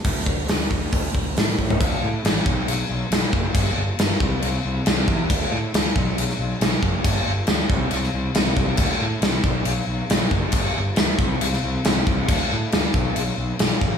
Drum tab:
CC |----------------|x---x---x---x---|x---x---x---x---|x---x---x---x---|
HH |o---o---o---o---|----------------|----------------|----------------|
SD |----o-------o---|----o-------o---|----o-------o---|----o----o--o---|
FT |---------------o|----------------|----------------|----------------|
BD |o-o---o-o-o---o-|o-----o-------o-|o-----o-------o-|o-----o-------o-|

CC |x---x---x---x---|x---x---x---x---|x---x---x---x---|x---x---x---x---|
HH |----------------|----------------|----------------|----------------|
SD |----o----o--o---|----o-------o---|----o----o--o---|----o-------o---|
FT |----------------|----------------|----------------|----------------|
BD |o-----o-------o-|o-----o-------o-|o-----o-------o-|o-----o-------o-|